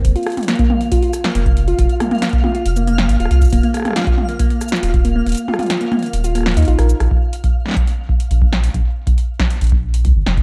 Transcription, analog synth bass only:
\new Staff \with { instrumentName = "Analog synth bass" } { \clef bass \time 4/4 \key ees \mixolydian \tempo 4 = 138 f,,16 r2 r8. f,,8. r16 | f,,16 r4. r16 f,,4 aes,,16 ees,,16 c,16 r16 | ees,,16 r2 r8. ees,,8. r16 | ees,,16 r4. r16 ees,,4 ees,16 bes,,16 bes,,16 r16 |
bes,,16 r2 r8. bes,,8. r16 | bes,,16 r4. r16 bes,,4 des,16 aes,,16 f,,16 r16 | }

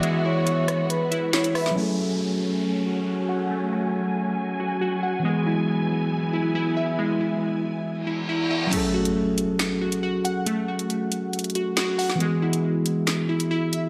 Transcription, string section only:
\new Staff \with { instrumentName = "String section" } { \time 4/4 \key fis \minor \tempo 4 = 138 << { <e fis'>1 | <fis gis''>1~ | <fis gis''>1~ | <fis gis''>1~ |
<fis gis''>1 | r1 | r1 | r1 | } \\ { <gis b>1 | <a cis'>1~ | <a cis'>1 | <b e'>1~ |
<b e'>1 | r1 | r1 | r1 | } >> }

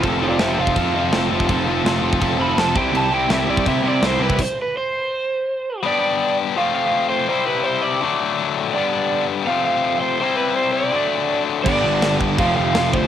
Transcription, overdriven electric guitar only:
\new Staff \with { instrumentName = "Overdriven electric guitar" } { \time 4/4 \key f \lydian \tempo 4 = 165 r8 <f' d''>8 <g' e''>8 f''2~ f''8~ | f''8 r2 b''8 a''8 g''8 | a''8 g''8 e''8 d''8 e''8 d''8 c''8 b'8 | c''8 b'8 c''2. |
d''4. r8 f''8 f''4 c''8 | c''8 b'8 c''8 d''2 r8 | d''4. r8 f''8 f''4 c''8 | c''8 b'8 c''8 d''2 r8 |
d''4. r8 f''8 f''4 c''8 | }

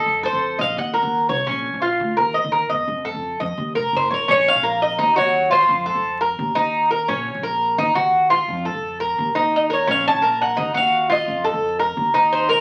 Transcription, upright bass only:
\new Staff \with { instrumentName = "Upright bass" } { \clef bass \time 4/4 \key ees \dorian \tempo 4 = 172 f,8. f,8. bes,,8 ees,8. ees,8. c,8 | bes,,8. bes,,8. d,8 ees,8. ees,8. e,8 | f,8. f,8. f,8 ees,8 f,,8 ges,,8 a,,8 | bes,,8. bes,,4~ bes,,16 ees,8 ees,4. |
f,8. f,4~ f,16 ees,8 ees,4. | bes,,8. bes,,4~ bes,,16 ees,8 ees,4. | f,8. f,4~ f,16 ees,8 ees,4. | bes,,8. bes,,4~ bes,,16 ees,8 ees,4. |
f,8. f,4~ f,16 ees,8 ees,4. | }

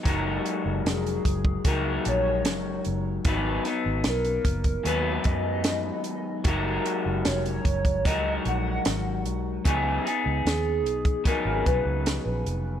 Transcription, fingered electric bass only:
\new Staff \with { instrumentName = "Fingered electric bass" } { \clef bass \time 4/4 \key fis \major \tempo 4 = 75 fis,,8 r16 fis,,16 eis,,8 fis,,8 cis,8 ais,,8 fis,,8 fis,,8 | gis,,8 r16 gis,,16 b,,8 fis,,8 dis,8 fis,4 r8 | fis,,8 r16 fis,,16 eis,,8 fis,,8 cis,8 ais,,8 gis,,8 b,,8 | cis,8 r16 cis,16 dis,8 b,,8 r16 gis,,16 b,,16 cis,8 ais,,16 eis,,8 | }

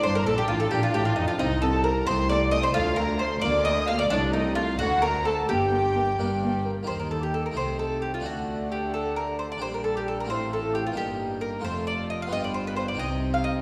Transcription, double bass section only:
\new Staff \with { instrumentName = "Double bass section" } { \clef bass \time 6/8 \key g \minor \tempo 4. = 88 g,,8 bes,,8 a,,8 bes,,8 a,,8 f,,8 | c,4. c,4. | d,4. d,4. | c,4. d,4. |
g,,4. g,,4. | ees,4. c,4. | d,2. | bes,,4. a,,4. |
g,,4. f,,4. | g,,4. c,4. | }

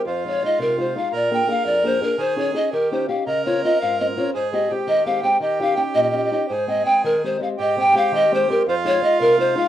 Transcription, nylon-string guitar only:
\new Staff \with { instrumentName = "Nylon-string guitar" } { \time 6/8 \key aes \major \tempo 4. = 112 f,8 <aes ees' f'>8 <aes ees' f'>8 c8 <aes ees' f'>8 <aes ees' f'>8 | bes,8 <bes d' aes'>8 <bes d' aes'>8 f,8 <bes d' aes'>8 <bes d' aes'>8 | ees8 <des' ees' aes'>8 <des' ees' aes'>8 ees8 <des' ees' g'>8 <des' ees' g'>8 | des8 <c' des' f'>8 <c' des' f'>8 aes,8 <c' des' f'>8 <c' des' f'>8 |
aes,8 <aes c' g'>8 <aes c' g'>8 ees8 <aes c' g'>8 <aes c' g'>8 | ees8 <des' ees' g'>8 <des' ees' g'>8 bes,8 <des' ees' g'>8 <des' ees' g'>8 | aes,8 <aes c' g''>8 <aes c' g''>8 ees8 <aes c' g'>8 <aes c' g'>8 | aes,8 <aes c' g'>8 <aes c' g'>8 ees8 <aes c' g'>8 <aes c' g'>8 |
f,8 <aes ees' f'>8 <aes ees' f'>8 c8 <aes ees' f'>8 <aes ees' f'>8 | }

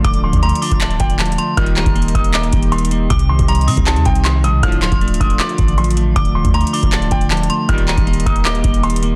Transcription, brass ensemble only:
\new Staff \with { instrumentName = "Brass ensemble" } { \clef bass \time 4/4 \key d \phrygian \tempo 4 = 157 r1 | <bes, ees g>8. r2. r16 | r1 | <a, d f>8. r2. r16 |
r1 | <bes, ees g>8. r2. r16 | }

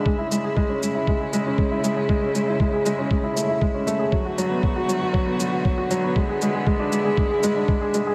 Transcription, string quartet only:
\new Staff \with { instrumentName = "String quartet" } { \time 4/4 \key a \major \tempo 4 = 118 << { <gis e'>1~ | <gis e'>1 | <a fis'>1 | <gis e'>1 | } \\ { cis1~ | cis1 | <d b>1~ | <d b>1 | } >> }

